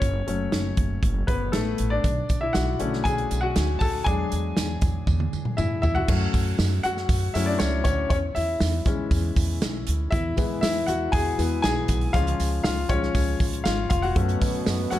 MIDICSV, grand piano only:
0, 0, Header, 1, 2, 480
1, 0, Start_track
1, 0, Key_signature, 3, "minor"
1, 0, Tempo, 505051
1, 17, Time_signature, 4, 2, 24, 8
1, 14248, End_track
2, 0, Start_track
2, 0, Title_t, "Grand piano"
2, 0, Program_c, 0, 0
2, 0, Control_c, 0, 64, 127
2, 0, Note_on_c, 0, 61, 64
2, 0, Note_on_c, 0, 73, 92
2, 29, Control_c, 0, 64, 0
2, 188, Control_c, 0, 64, 127
2, 249, Note_off_c, 0, 61, 0
2, 253, Note_on_c, 0, 54, 51
2, 257, Note_on_c, 0, 57, 44
2, 263, Note_on_c, 0, 61, 56
2, 940, Note_off_c, 0, 54, 0
2, 942, Note_off_c, 0, 57, 0
2, 945, Note_off_c, 0, 61, 0
2, 1209, Note_on_c, 0, 71, 78
2, 1230, Note_on_c, 0, 59, 65
2, 1256, Note_off_c, 0, 73, 0
2, 1265, Note_off_c, 0, 71, 0
2, 1283, Note_off_c, 0, 59, 0
2, 1445, Note_on_c, 0, 69, 77
2, 1466, Note_on_c, 0, 57, 63
2, 1798, Note_off_c, 0, 57, 0
2, 1808, Note_on_c, 0, 74, 85
2, 1824, Note_off_c, 0, 69, 0
2, 1828, Note_on_c, 0, 62, 68
2, 1952, Control_c, 0, 64, 0
2, 2103, Control_c, 0, 64, 127
2, 2271, Note_off_c, 0, 62, 0
2, 2288, Note_on_c, 0, 76, 86
2, 2308, Note_on_c, 0, 64, 69
2, 2309, Note_off_c, 0, 74, 0
2, 2404, Note_on_c, 0, 78, 96
2, 2416, Note_off_c, 0, 64, 0
2, 2418, Note_off_c, 0, 76, 0
2, 2424, Note_on_c, 0, 66, 73
2, 2652, Note_on_c, 0, 50, 55
2, 2658, Note_on_c, 0, 57, 49
2, 2662, Note_on_c, 0, 61, 63
2, 2869, Note_off_c, 0, 66, 0
2, 2887, Note_on_c, 0, 80, 97
2, 2908, Note_off_c, 0, 78, 0
2, 2909, Note_on_c, 0, 68, 78
2, 2976, Note_off_c, 0, 50, 0
2, 2979, Note_off_c, 0, 57, 0
2, 2981, Note_off_c, 0, 61, 0
2, 3238, Note_on_c, 0, 78, 94
2, 3240, Note_off_c, 0, 68, 0
2, 3260, Note_on_c, 0, 66, 77
2, 3266, Note_off_c, 0, 80, 0
2, 3596, Note_off_c, 0, 66, 0
2, 3602, Note_on_c, 0, 81, 95
2, 3622, Note_off_c, 0, 78, 0
2, 3626, Note_on_c, 0, 69, 74
2, 3844, Note_on_c, 0, 80, 102
2, 3848, Note_off_c, 0, 69, 0
2, 3852, Note_on_c, 0, 54, 57
2, 3859, Note_on_c, 0, 56, 51
2, 3860, Note_off_c, 0, 81, 0
2, 3865, Note_on_c, 0, 62, 61
2, 3867, Note_on_c, 0, 68, 72
2, 3876, Control_c, 0, 64, 0
2, 4035, Control_c, 0, 64, 127
2, 5256, Note_off_c, 0, 80, 0
2, 5268, Note_off_c, 0, 68, 0
2, 5293, Note_on_c, 0, 76, 91
2, 5313, Note_on_c, 0, 64, 74
2, 5516, Note_off_c, 0, 76, 0
2, 5531, Note_on_c, 0, 76, 97
2, 5532, Note_off_c, 0, 64, 0
2, 5552, Note_on_c, 0, 64, 76
2, 5652, Note_on_c, 0, 78, 96
2, 5660, Note_off_c, 0, 64, 0
2, 5661, Note_off_c, 0, 76, 0
2, 5673, Note_on_c, 0, 66, 79
2, 5740, Note_off_c, 0, 54, 0
2, 5744, Note_off_c, 0, 56, 0
2, 5747, Note_off_c, 0, 62, 0
2, 5778, Note_on_c, 0, 54, 57
2, 5783, Note_on_c, 0, 57, 50
2, 5789, Note_on_c, 0, 61, 62
2, 5797, Control_c, 0, 64, 0
2, 5953, Control_c, 0, 64, 127
2, 6460, Note_off_c, 0, 78, 0
2, 6465, Note_off_c, 0, 54, 0
2, 6468, Note_off_c, 0, 57, 0
2, 6471, Note_off_c, 0, 61, 0
2, 6471, Note_off_c, 0, 66, 0
2, 6495, Note_on_c, 0, 78, 112
2, 6515, Note_on_c, 0, 66, 82
2, 6945, Note_off_c, 0, 78, 0
2, 6956, Note_off_c, 0, 66, 0
2, 6975, Note_on_c, 0, 76, 92
2, 6982, Note_on_c, 0, 54, 48
2, 6985, Note_on_c, 0, 57, 49
2, 6988, Note_on_c, 0, 61, 54
2, 6993, Note_on_c, 0, 64, 72
2, 7089, Note_on_c, 0, 74, 82
2, 7100, Note_off_c, 0, 64, 0
2, 7103, Note_off_c, 0, 76, 0
2, 7106, Note_on_c, 0, 62, 65
2, 7198, Note_off_c, 0, 54, 0
2, 7200, Note_off_c, 0, 57, 0
2, 7202, Note_off_c, 0, 61, 0
2, 7210, Note_on_c, 0, 73, 77
2, 7216, Note_off_c, 0, 62, 0
2, 7220, Note_off_c, 0, 74, 0
2, 7228, Note_on_c, 0, 61, 60
2, 7265, Note_off_c, 0, 73, 0
2, 7281, Note_off_c, 0, 61, 0
2, 7451, Note_on_c, 0, 73, 79
2, 7469, Note_on_c, 0, 61, 62
2, 7682, Note_off_c, 0, 73, 0
2, 7689, Note_off_c, 0, 61, 0
2, 7696, Note_on_c, 0, 73, 83
2, 7712, Note_on_c, 0, 61, 71
2, 7713, Control_c, 0, 64, 0
2, 7751, Note_off_c, 0, 73, 0
2, 7765, Note_off_c, 0, 61, 0
2, 7864, Control_c, 0, 64, 127
2, 7933, Note_on_c, 0, 76, 92
2, 7948, Note_on_c, 0, 64, 62
2, 8384, Note_off_c, 0, 76, 0
2, 8392, Note_off_c, 0, 64, 0
2, 8413, Note_on_c, 0, 52, 52
2, 8419, Note_on_c, 0, 56, 50
2, 8427, Note_on_c, 0, 61, 61
2, 9101, Note_off_c, 0, 52, 0
2, 9105, Note_off_c, 0, 56, 0
2, 9109, Note_off_c, 0, 61, 0
2, 9604, Note_on_c, 0, 76, 101
2, 9627, Note_on_c, 0, 64, 81
2, 9635, Control_c, 0, 64, 0
2, 9823, Control_c, 0, 64, 127
2, 9852, Note_on_c, 0, 52, 54
2, 9859, Note_on_c, 0, 56, 50
2, 9864, Note_on_c, 0, 59, 59
2, 10071, Note_off_c, 0, 64, 0
2, 10071, Note_off_c, 0, 76, 0
2, 10086, Note_on_c, 0, 76, 96
2, 10108, Note_on_c, 0, 64, 75
2, 10326, Note_on_c, 0, 78, 90
2, 10328, Note_off_c, 0, 64, 0
2, 10341, Note_off_c, 0, 76, 0
2, 10348, Note_on_c, 0, 66, 76
2, 10568, Note_off_c, 0, 66, 0
2, 10569, Note_on_c, 0, 80, 102
2, 10581, Note_off_c, 0, 78, 0
2, 10592, Note_on_c, 0, 68, 83
2, 10804, Note_off_c, 0, 52, 0
2, 10810, Note_off_c, 0, 56, 0
2, 10812, Note_off_c, 0, 59, 0
2, 10818, Note_on_c, 0, 52, 48
2, 10824, Note_on_c, 0, 56, 48
2, 10826, Note_on_c, 0, 59, 59
2, 11033, Note_off_c, 0, 68, 0
2, 11033, Note_off_c, 0, 80, 0
2, 11036, Note_off_c, 0, 52, 0
2, 11039, Note_off_c, 0, 56, 0
2, 11040, Note_off_c, 0, 59, 0
2, 11048, Note_on_c, 0, 80, 103
2, 11070, Note_on_c, 0, 68, 79
2, 11512, Note_off_c, 0, 68, 0
2, 11528, Note_on_c, 0, 77, 102
2, 11536, Note_on_c, 0, 53, 58
2, 11542, Note_on_c, 0, 56, 57
2, 11547, Note_on_c, 0, 61, 62
2, 11549, Note_off_c, 0, 80, 0
2, 11550, Note_on_c, 0, 65, 84
2, 11552, Control_c, 0, 64, 0
2, 11737, Control_c, 0, 64, 127
2, 11992, Note_off_c, 0, 65, 0
2, 11994, Note_off_c, 0, 77, 0
2, 12008, Note_on_c, 0, 77, 94
2, 12032, Note_on_c, 0, 65, 75
2, 12247, Note_off_c, 0, 53, 0
2, 12250, Note_off_c, 0, 65, 0
2, 12252, Note_on_c, 0, 73, 89
2, 12253, Note_off_c, 0, 56, 0
2, 12256, Note_off_c, 0, 61, 0
2, 12261, Note_on_c, 0, 53, 46
2, 12262, Note_off_c, 0, 77, 0
2, 12267, Note_on_c, 0, 56, 46
2, 12270, Note_on_c, 0, 61, 72
2, 12477, Note_off_c, 0, 53, 0
2, 12480, Note_off_c, 0, 56, 0
2, 12949, Note_off_c, 0, 61, 0
2, 12961, Note_on_c, 0, 77, 87
2, 12983, Note_on_c, 0, 65, 65
2, 12998, Note_off_c, 0, 73, 0
2, 13192, Note_off_c, 0, 77, 0
2, 13205, Note_off_c, 0, 65, 0
2, 13206, Note_on_c, 0, 77, 83
2, 13225, Note_on_c, 0, 65, 68
2, 13328, Note_on_c, 0, 78, 94
2, 13334, Note_off_c, 0, 65, 0
2, 13337, Note_off_c, 0, 77, 0
2, 13348, Note_on_c, 0, 66, 73
2, 13452, Note_on_c, 0, 54, 56
2, 13457, Note_on_c, 0, 57, 54
2, 13464, Note_on_c, 0, 61, 62
2, 13473, Control_c, 0, 64, 0
2, 13660, Control_c, 0, 64, 127
2, 14135, Note_off_c, 0, 78, 0
2, 14145, Note_off_c, 0, 66, 0
2, 14158, Note_off_c, 0, 54, 0
2, 14165, Note_off_c, 0, 57, 0
2, 14166, Note_on_c, 0, 78, 88
2, 14169, Note_off_c, 0, 61, 0
2, 14172, Note_on_c, 0, 54, 49
2, 14179, Note_on_c, 0, 57, 44
2, 14183, Note_on_c, 0, 61, 54
2, 14186, Note_on_c, 0, 66, 69
2, 14221, Note_off_c, 0, 78, 0
2, 14239, Note_off_c, 0, 66, 0
2, 14248, Note_off_c, 0, 54, 0
2, 14248, Note_off_c, 0, 57, 0
2, 14248, Note_off_c, 0, 61, 0
2, 14248, End_track
0, 0, End_of_file